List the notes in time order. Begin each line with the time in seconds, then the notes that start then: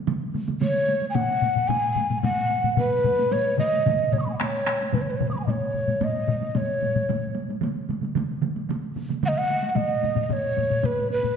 0.07 taiko mid, taiko high
0.34 taiko mid, taiko high
0.48 taiko mid, taiko high
0.61 C#5, taiko mid, taiko high
0.88 taiko high
1.02 taiko high
1.10 G#5
1.15 F#5, taiko low-mid, taiko high
1.42 taiko low-mid, taiko high
1.56 taiko low-mid
1.68 G#5, taiko low-mid, taiko high
1.96 taiko low-mid, taiko high
2.10 taiko low-mid, taiko high
2.23 F#5, taiko low-mid, taiko high
2.50 taiko high
2.64 taiko low-mid, taiko high
2.77 B4, taiko low-mid, taiko high
3.04 taiko low-mid, taiko high
3.19 taiko high
3.32 C#5, taiko high
3.58 D#5, taiko low-mid, taiko mid, taiko high
3.73 taiko high
3.86 taiko low-mid, taiko mid, taiko high
4.12 C#5, taiko low-mid, taiko mid, taiko high
4.19 C#6 D#6
4.26 G#5 B5, taiko high
4.33 D#5 F#5
4.40 C#5, taiko rim, taiko high
4.67 taiko rim, taiko high
4.81 taiko high
4.93 B4, taiko low-mid, taiko mid, taiko high
5.01 C#5
5.10 B4
5.17 C#5, taiko low-mid, taiko mid
5.21 taiko high
5.27 B4 D#6
5.32 B5 C#6, taiko high
5.39 G#5
5.44 D#5 F#5, taiko low-mid
5.49 C#5, taiko high
5.74 taiko low-mid
5.88 taiko low-mid, taiko high
6.01 D#5, taiko low-mid, taiko high
6.28 taiko low-mid, taiko high
6.42 taiko high
6.55 C#5, taiko low-mid, taiko high
6.82 taiko low-mid, taiko high
6.96 taiko low-mid, taiko high
7.09 taiko low-mid, taiko high
7.35 taiko high
7.49 taiko high
7.61 taiko mid, taiko high
7.89 taiko mid, taiko high
8.02 taiko mid, taiko high
8.15 taiko mid, taiko high
8.42 taiko mid, taiko high
8.57 taiko high
8.69 taiko mid, taiko high
8.96 taiko mid, taiko high
9.09 taiko mid, taiko high
9.23 F#5, taiko mid, taiko high
9.28 D#5
9.38 F#5
9.50 taiko high
9.63 taiko high
9.69 F#5
9.75 D#5, taiko low-mid, taiko high
10.03 taiko low-mid, taiko high
10.16 taiko low-mid, taiko high
10.23 D#5
10.29 C#5, taiko low-mid, taiko high
10.56 taiko low-mid, taiko high
10.70 taiko low-mid, taiko high
10.83 B4, taiko low-mid, taiko high
11.10 B4, taiko high
11.23 taiko low-mid, taiko high